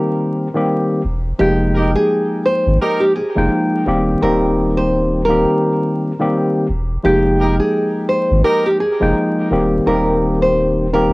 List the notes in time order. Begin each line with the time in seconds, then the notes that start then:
Already playing: D#3 G3 A#3 C4 G4 A#4
0.54 D#3 G3 A#3 C4 G4
1.05 E1
1.39 F1 F3 G#3 A#3 D#4 G4 G5
1.75 D#4 G4 A#4
1.96 G#4
2.46 C5
2.67 G#1
2.80 D#4 G4 A#4
3.00 G4
3.16 G#4
3.36 F1 F3 G#3 A#3 D#4 G5
3.86 D#1 D#3 G3 A#3 C4 G4
4.22 D#1 D#3 G3 A#3 C4 G4 A#4
4.77 C5
5.25 D#3 G3 A#4
5.29 A#3 C4 G4
6.19 D#3 G3 A#3 C4 G4
6.69 E1
7.03 F1 F3 G#3 A#3 D#4 G4 G5
7.40 D#4 G4 A#4
7.60 G#4
8.09 C5
8.31 G#1
8.44 D#4 G4 A#4
8.66 G4
8.80 G#4
9.00 F1 F3 G#3 A#3 D#4 G5
9.50 D#1 D#3 G3 A#3 C4 G4
9.86 D#1 D#3 G3 A#3 C4 G4 A#4
10.42 C5
10.92 D#3 G3 A#3 C4 G4 A#4